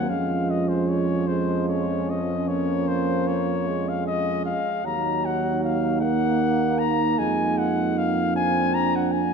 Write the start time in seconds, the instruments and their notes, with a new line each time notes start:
Already playing: trombone section F#3, cornet F#5
0.09 tuba F2, trombone section F3, euphonium G#3, french horn section C#4, cornet F5
0.51 cornet D#5
0.69 cornet C5
0.89 cornet C#5
1.27 euphonium G#3, cornet C5
1.69 cornet C#5
2.10 cornet D#5
2.48 euphonium A#3, cornet C#5
2.88 cornet C5
3.28 cornet C#5
3.68 euphonium G#3
3.89 cornet F5
4.07 cornet D#5
4.46 cornet F5
4.84 tuba D#2, euphonium F#3, trombone section A#3, french horn section D#4, cornet A#5
5.25 cornet F#5
5.64 cornet F5
6.01 euphonium A#3, cornet F#5
6.79 cornet A#5
7.18 tuba F2, euphonium G#3, cornet G#5
7.58 cornet F#5
7.98 cornet F5
8.35 euphonium C4, french horn section D4, cornet G#5
8.75 cornet A#5
8.96 cornet F#5
9.12 cornet G#5